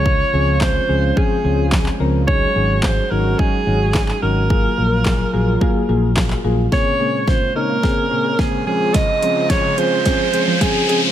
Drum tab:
HH |----------------|----------------|----------------|----------------|
CP |----x-------xx--|----x-------xx--|----x-------xx--|----------------|
SD |----o-------o---|----o-------o---|----o-------o---|o---o---o---o---|
BD |o---o---o---o---|o---o---o---o---|o---o---o---o---|o---o---o---o---|

HH |x-x-x-x-x-x-x-x-|
CP |----------------|
SD |o---o---o---o---|
BD |o---o---o---o---|